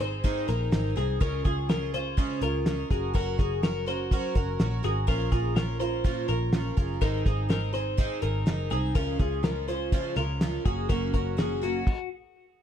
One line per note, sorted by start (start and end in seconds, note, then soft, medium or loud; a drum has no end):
0.00 0.45 G#1 medium
0.00 0.23 G#3 soft
0.00 0.23 C4 soft
0.00 0.23 D#4 soft
0.00 0.24 G#4 medium
0.00 0.46 C5 medium
0.00 closed hi-hat medium
0.24 0.48 G#2 medium
0.24 0.48 D#3 medium
0.24 0.49 G#3 medium
0.24 0.48 C4 medium
0.24 0.47 D#4 medium
0.24 0.46 G#4 medium
0.24 kick medium
0.24 closed hi-hat medium
0.48 0.69 A#1 medium
0.48 0.70 G#3 soft
0.48 0.71 C4 soft
0.48 0.72 D#4 soft
0.48 0.72 G#4 medium
0.48 0.94 A#4 medium
0.48 closed hi-hat medium
0.71 0.93 G#1 medium
0.71 0.96 G#3 medium
0.71 0.96 C4 medium
0.71 0.95 D#4 medium
0.71 0.94 G#4 medium
0.71 snare loud
0.71 closed hi-hat medium
0.96 1.18 C2 medium
0.96 1.20 G#3 soft
0.96 1.21 C4 medium
0.96 1.21 D#4 medium
0.96 1.21 G#4 medium
0.96 closed hi-hat medium
1.20 1.42 C#2 medium
1.20 1.45 C#3 medium
1.20 1.45 G#3 medium
1.20 1.45 C#4 medium
1.20 1.44 F4 medium
1.20 1.43 G#4 medium
1.20 1.45 A#4 medium
1.20 kick loud
1.20 closed hi-hat medium
1.45 2.26 C#2 medium
1.45 1.68 C#4 soft
1.45 1.69 F4 soft
1.45 1.69 G#4 medium
1.45 kick medium
1.45 closed hi-hat medium
1.69 1.93 G#3 medium
1.69 1.94 C#4 medium
1.69 1.94 F4 medium
1.69 1.93 G#4 medium
1.69 1.94 A#4 medium
1.69 snare loud
1.69 closed hi-hat medium
1.94 2.17 C#4 soft
1.94 2.17 F4 soft
1.94 2.18 G#4 medium
1.94 2.40 C5 medium
1.94 closed hi-hat medium
2.17 2.42 C#3 medium
2.17 2.42 G#3 medium
2.17 2.42 C#4 medium
2.17 2.42 F4 medium
2.17 2.41 G#4 medium
2.17 kick medium
2.17 closed hi-hat medium
2.41 2.83 C#2 medium
2.41 2.66 C#4 soft
2.41 2.67 F4 soft
2.41 2.66 G#4 medium
2.41 2.88 A#4 medium
2.41 closed hi-hat medium
2.66 2.90 G#3 medium
2.66 2.91 C#4 medium
2.66 2.91 F4 medium
2.66 2.90 G#4 medium
2.66 snare loud
2.66 closed hi-hat medium
2.90 3.11 F#1 medium
2.90 3.13 C#4 soft
2.90 3.13 F#4 medium
2.90 3.15 G#4 medium
2.90 3.14 A#4 medium
2.90 kick medium
2.90 closed hi-hat medium
3.14 3.35 F#1 loud
3.14 3.38 F#3 medium
3.14 3.39 C#4 medium
3.14 3.38 F#4 medium
3.14 3.36 A#4 medium
3.14 3.39 A#4 medium
3.14 kick medium
3.14 closed hi-hat medium
3.38 4.20 F#1 medium
3.38 3.62 C#4 soft
3.38 3.63 F#4 medium
3.38 3.63 G#4 medium
3.38 3.62 A#4 soft
3.38 kick medium
3.38 closed hi-hat medium
3.63 3.87 F#3 medium
3.63 3.87 C#4 medium
3.63 3.86 F#4 medium
3.63 3.87 A#4 medium
3.63 3.85 A#4 medium
3.63 snare loud
3.63 closed hi-hat medium
3.86 4.11 C#4 soft
3.86 4.12 F#4 soft
3.86 4.11 A#4 medium
3.86 4.36 C5 medium
3.86 closed hi-hat medium
4.11 4.36 F#3 medium
4.11 4.36 C#4 medium
4.11 4.35 F#4 medium
4.11 4.34 A#4 medium
4.11 kick medium
4.11 closed hi-hat medium
4.35 4.56 F#1 medium
4.35 4.59 C#4 soft
4.35 4.60 F#4 medium
4.35 4.60 A#4 medium
4.35 4.81 A#4 medium
4.35 kick medium
4.35 closed hi-hat medium
4.59 4.80 A#1 medium
4.59 4.84 F#3 medium
4.59 4.84 C#4 medium
4.59 4.83 F#4 medium
4.59 4.81 A#4 medium
4.59 snare loud
4.59 closed hi-hat medium
4.83 5.05 G#1 medium
4.83 5.06 C#4 soft
4.83 5.07 F#4 soft
4.83 5.08 G#4 medium
4.83 5.07 A#4 medium
4.83 closed hi-hat medium
5.07 5.29 A#1 loud
5.07 5.32 A#2 medium
5.07 5.32 F3 medium
5.07 5.32 C#4 medium
5.07 5.31 F4 medium
5.07 5.30 A#4 medium
5.07 5.31 A#4 medium
5.07 kick medium
5.07 closed hi-hat medium
5.31 6.13 A#1 medium
5.31 5.55 C#4 soft
5.31 5.56 F4 medium
5.31 5.56 G#4 medium
5.31 5.56 A#4 medium
5.31 kick medium
5.31 closed hi-hat medium
5.56 5.80 F3 medium
5.56 5.80 C#4 medium
5.56 5.79 F4 medium
5.56 5.80 A#4 medium
5.56 5.78 A#4 medium
5.56 snare loud
5.56 closed hi-hat medium
5.80 6.04 C#4 soft
5.80 6.04 F4 medium
5.80 6.04 A#4 medium
5.80 6.26 C5 medium
5.80 closed hi-hat medium
6.04 6.29 A#2 medium
6.04 6.29 F3 medium
6.04 6.29 C#4 medium
6.04 6.28 F4 medium
6.04 6.27 A#4 medium
6.04 kick medium
6.04 closed hi-hat medium
6.28 6.70 A#1 medium
6.28 6.52 C#4 soft
6.28 6.53 F4 soft
6.28 6.53 A#4 medium
6.28 6.77 A#4 medium
6.28 closed hi-hat medium
6.53 6.77 F3 medium
6.53 6.77 C#4 medium
6.53 6.77 F4 medium
6.53 6.75 A#4 medium
6.53 snare loud
6.53 closed hi-hat medium
6.77 6.98 F#1 medium
6.77 7.02 C#4 soft
6.77 7.01 F4 medium
6.77 7.01 G#4 medium
6.77 7.01 A#4 medium
6.77 kick medium
6.77 closed hi-hat medium
7.01 7.22 G#1 loud
7.01 7.26 G#2 medium
7.01 7.26 D#3 medium
7.01 7.26 G#3 medium
7.01 7.25 C4 medium
7.01 7.25 D#4 medium
7.01 7.24 G#4 medium
7.01 7.25 A#4 medium
7.01 kick medium
7.01 closed hi-hat medium
7.25 8.07 G#1 medium
7.25 7.48 G#3 soft
7.25 7.48 C4 medium
7.25 7.49 D#4 medium
7.25 7.49 G#4 soft
7.25 7.49 G#4 medium
7.25 kick medium
7.25 closed hi-hat medium
7.49 7.74 G#3 medium
7.49 7.73 C4 medium
7.49 7.73 D#4 medium
7.49 7.71 G#4 medium
7.49 7.73 A#4 medium
7.49 snare loud
7.49 closed hi-hat medium
7.73 7.97 G#3 soft
7.73 7.97 C4 soft
7.73 7.97 D#4 soft
7.73 7.97 G#4 medium
7.73 8.20 C5 medium
7.73 closed hi-hat medium
7.97 8.22 G#2 medium
7.97 8.22 D#3 medium
7.97 8.22 G#3 medium
7.97 8.22 C4 medium
7.97 8.21 D#4 medium
7.97 8.21 G#4 medium
7.97 kick medium
7.97 closed hi-hat medium
8.22 8.44 G#1 medium
8.22 8.45 G#3 soft
8.22 8.45 C4 soft
8.22 8.46 D#4 medium
8.22 8.47 G#4 medium
8.22 8.68 A#4 medium
8.22 closed hi-hat medium
8.46 8.68 F#1 medium
8.46 8.71 G#3 medium
8.46 8.70 C4 medium
8.46 8.69 D#4 medium
8.46 8.69 G#4 medium
8.46 snare loud
8.46 closed hi-hat medium
8.70 8.92 C2 medium
8.70 8.94 G#3 soft
8.70 8.95 C4 medium
8.70 8.95 D#4 medium
8.70 8.95 G#4 medium
8.70 closed hi-hat medium
8.95 9.16 C#2 loud
8.95 9.20 C#3 medium
8.95 9.20 F3 medium
8.95 9.20 G#3 medium
8.95 9.19 C#4 medium
8.95 9.18 F4 medium
8.95 9.20 A#4 medium
8.95 kick loud
8.95 closed hi-hat medium
9.19 10.01 C#2 medium
9.19 9.43 G#3 soft
9.19 9.43 C#4 soft
9.19 9.44 F4 medium
9.19 9.44 G#4 medium
9.19 kick medium
9.19 closed hi-hat medium
9.43 9.68 F3 medium
9.43 9.68 G#3 medium
9.43 9.68 C#4 medium
9.43 9.67 F4 medium
9.43 9.68 A#4 medium
9.43 snare loud
9.43 closed hi-hat medium
9.68 9.92 G#3 soft
9.68 9.92 C#4 medium
9.68 9.92 F4 medium
9.68 10.14 C5 medium
9.68 closed hi-hat medium
9.92 10.17 C#3 medium
9.92 10.17 F3 medium
9.92 10.17 G#3 medium
9.92 10.17 C#4 medium
9.92 10.16 F4 medium
9.92 kick medium
9.92 closed hi-hat medium
10.16 10.58 C#2 medium
10.16 10.41 G#3 soft
10.16 10.41 C#4 soft
10.16 10.41 F4 medium
10.16 10.62 A#4 medium
10.16 closed hi-hat medium
10.41 10.65 F3 medium
10.41 10.66 G#3 medium
10.41 10.65 C#4 medium
10.41 10.65 F4 medium
10.41 snare loud
10.41 closed hi-hat medium
10.65 10.86 F#1 loud
10.65 10.88 F#3 medium
10.65 10.88 A#3 medium
10.65 10.89 C#4 medium
10.65 10.89 F#4 medium
10.65 10.89 G#4 medium
10.65 kick medium
10.65 closed hi-hat medium
10.89 11.10 F#1 loud
10.89 11.14 F#2 medium
10.89 11.14 C#3 medium
10.89 11.14 F#3 medium
10.89 11.13 A#3 medium
10.89 11.13 C#4 medium
10.89 11.12 F#4 medium
10.89 11.13 A#4 medium
10.89 kick loud
10.89 closed hi-hat medium
11.13 11.83 F#1 medium
11.13 11.36 F#3 soft
11.13 11.36 A#3 soft
11.13 11.37 C#4 soft
11.13 11.37 F#4 medium
11.13 11.38 A#4 medium
11.13 kick medium
11.13 closed hi-hat medium
11.37 11.62 F#3 medium
11.37 11.62 A#3 medium
11.37 11.61 C#4 medium
11.37 11.60 F#4 medium
11.37 11.62 G#4 medium
11.37 snare loud
11.37 closed hi-hat medium
11.62 11.87 F#3 soft
11.62 11.87 A#3 soft
11.62 11.87 C#4 medium
11.62 11.86 F#4 medium
11.62 12.08 F#4 medium
11.62 closed hi-hat medium
11.87 kick loud
11.87 crash medium